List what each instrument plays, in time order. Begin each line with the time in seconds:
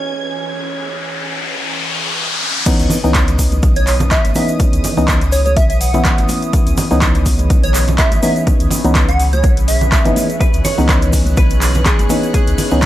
Already playing: analog synth pad E3 C#4 G#4 B4 G#5, hollow-body jazz guitar C#4, string machine G#6, riser
2.66 synth stab E3 B3 C#4 D#4, analog synth pad E3 C#4 G#4 B4 D#6, kick, closed hi-hat, crash, shaker
2.80 sub bass C#2, closed hi-hat, shaker
2.90 open hi-hat, low conga, shaker
3.04 sub bass C#2, synth stab E3 B3 C#4 D#4, high conga, shaker
3.15 kick, clap, closed hi-hat, shaker
3.28 closed hi-hat, shaker
3.39 kick, open hi-hat, shaker
3.52 closed hi-hat, high conga, shaker
3.63 sub bass B1, kick, closed hi-hat, shaker
3.76 digital synth lead C#5, closed hi-hat, shaker
3.87 clap, open hi-hat, shaker
4.00 closed hi-hat, low conga, shaker
4.11 digital synth lead E5, kick, clap, closed hi-hat, shaker
4.25 sub bass G#1, closed hi-hat, high conga, shaker
4.35 synth stab E3 B3 C#4 D#4, digital synth lead E5, open hi-hat, high conga, shaker
4.48 closed hi-hat, shaker
4.60 kick, closed hi-hat, shaker
4.73 sub bass C#2, closed hi-hat, shaker
4.84 open hi-hat, low conga, shaker
4.97 sub bass C#2, synth stab E3 B3 C#4 D#4, high conga, shaker
5.08 kick, clap, closed hi-hat, shaker
5.21 closed hi-hat, shaker
5.32 digital synth lead C#5, open hi-hat, shaker
5.46 digital synth lead C#5, closed hi-hat, high conga, shaker
5.57 sub bass B1, digital synth lead E5, kick, closed hi-hat, shaker
5.70 digital synth lead E5, closed hi-hat, shaker
5.81 digital synth lead F#5, open hi-hat, shaker
5.94 synth stab E3 B3 C#4 E4, closed hi-hat, low conga, shaker
6.05 kick, clap, closed hi-hat, shaker
6.18 sub bass G#1, closed hi-hat, high conga, shaker
6.28 open hi-hat, high conga, shaker
6.42 closed hi-hat, shaker
6.53 kick, closed hi-hat, shaker
6.67 sub bass C#2, closed hi-hat, shaker
6.77 open hi-hat, low conga, shaker
6.91 sub bass C#2, synth stab E3 B3 C#4 D#4, high conga, shaker
7.02 kick, clap, closed hi-hat, shaker
7.15 closed hi-hat, shaker
7.26 kick, open hi-hat, shaker
7.39 closed hi-hat, high conga, shaker
7.50 sub bass B1, kick, closed hi-hat, shaker
7.63 digital synth lead C#5, closed hi-hat, shaker
7.74 clap, open hi-hat, shaker
7.88 closed hi-hat, low conga, shaker
7.98 digital synth lead E5, kick, clap, closed hi-hat, shaker
8.12 sub bass G#1, closed hi-hat, high conga, shaker
8.23 synth stab E3 B3 C#4 D#4, digital synth lead E5, open hi-hat, high conga, shaker
8.36 closed hi-hat, shaker
8.47 kick, closed hi-hat, shaker
8.60 sub bass C#2, closed hi-hat, shaker
8.71 open hi-hat, low conga, shaker
8.84 sub bass C#2, synth stab E3 B3 C#4 D#4, closed hi-hat, high conga, shaker
8.95 kick, clap, closed hi-hat, shaker
9.09 digital synth lead F#5, closed hi-hat, shaker
9.20 open hi-hat, shaker
9.33 digital synth lead C#5, closed hi-hat, high conga, shaker
9.43 sub bass B1, kick, closed hi-hat, shaker
9.57 closed hi-hat, shaker
9.68 digital synth lead E5, open hi-hat, shaker
9.81 low conga, shaker
9.92 kick, clap, closed hi-hat, shaker
10.04 sub bass G#1, synth stab E3 B3 C#4 D#4, closed hi-hat, high conga, low conga, shaker
10.16 open hi-hat, high conga, shaker
10.30 closed hi-hat, shaker
10.40 hollow-body jazz guitar B4, analog synth pad C#5, string machine F#6, kick, closed hi-hat, shaker
10.54 sub bass C#2, closed hi-hat, shaker
10.65 hollow-body jazz guitar C#5, open hi-hat, ride, low conga, shaker
10.78 sub bass C#2, synth stab E3 B3 C#4 D#4, high conga, shaker
10.89 kick, clap, closed hi-hat, shaker
11.02 closed hi-hat, shaker
11.13 kick, open hi-hat, ride, shaker
11.26 closed hi-hat, high conga, shaker
11.37 sub bass B1, hollow-body jazz guitar B4, kick, closed hi-hat, shaker
11.50 closed hi-hat, shaker
11.62 clap, open hi-hat, ride, shaker
11.74 closed hi-hat, low conga, shaker
11.86 hollow-body jazz guitar G#4, kick, clap, closed hi-hat, shaker
11.99 sub bass G#1, closed hi-hat, high conga, shaker
12.09 synth stab E3 B3 C#4 D#4, open hi-hat, ride, high conga, shaker
12.23 closed hi-hat, shaker
12.34 hollow-body jazz guitar G#4, kick, closed hi-hat, shaker
12.47 sub bass C#2, closed hi-hat, shaker
12.58 open hi-hat, ride, low conga, shaker
12.71 sub bass C#2, synth stab E3 B3 C#4 D#4, high conga, shaker
12.82 kick, clap, closed hi-hat, shaker